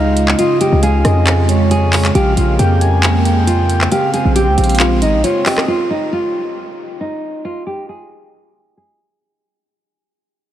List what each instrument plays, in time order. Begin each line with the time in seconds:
Already playing: 808-style bass C#2, analog synth pad C#3 G#3 F4, nylon-string guitar D#4, soft synth lead F5
0.17 closed hi-hat
0.28 clap
0.39 nylon-string guitar F4, soft synth lead D#5, closed hi-hat
0.61 nylon-string guitar G4, closed hi-hat
0.72 808-style bass C#2
0.83 nylon-string guitar G#4, soft synth lead F5, closed hi-hat
1.05 808-style bass F2, soft synth lead D#5, cross-stick, closed hi-hat
1.27 clap, closed hi-hat
1.49 soft synth lead C#5, closed hi-hat
1.71 nylon-string guitar G#4, closed hi-hat
1.93 clap, closed hi-hat, open hi-hat
2.05 clap, closed hi-hat
2.15 808-style bass A#1, analog synth pad A#3, nylon-string guitar G4, soft synth lead F5, closed hi-hat
2.37 808-style bass A#1, nylon-string guitar F4, closed hi-hat
2.59 808-style bass F2, nylon-string guitar G4, soft synth lead G5, closed hi-hat
2.81 soft synth lead G#5, closed hi-hat
3.03 clap, closed hi-hat
3.25 soft synth lead G5, closed hi-hat
3.47 nylon-string guitar F4, closed hi-hat
3.69 closed hi-hat
3.81 clap
3.92 analog synth pad C4, nylon-string guitar G4, soft synth lead F5, closed hi-hat
4.14 nylon-string guitar G#4, closed hi-hat
4.25 808-style bass A#1
4.36 nylon-string guitar G4, soft synth lead G5, closed hi-hat
4.47 808-style bass C#2
4.58 808-style bass A#1, soft synth lead F5, closed hi-hat
4.64 closed hi-hat
4.69 closed hi-hat
4.75 closed hi-hat
4.80 nylon-string guitar F4, clap, closed hi-hat
5.02 808-style bass G#1, nylon-string guitar D#4, soft synth lead D#5, closed hi-hat
5.14 808-style bass A#1
5.24 nylon-string guitar F4, soft synth lead C#5, closed hi-hat
5.46 nylon-string guitar G4, soft synth lead D#5, clap, open hi-hat
5.58 cross-stick, clap
5.68 nylon-string guitar F4
5.90 nylon-string guitar D#4
6.13 nylon-string guitar F4
7.01 nylon-string guitar D#4
7.45 nylon-string guitar F4
7.67 nylon-string guitar G4
7.89 nylon-string guitar G#4
8.77 nylon-string guitar G#4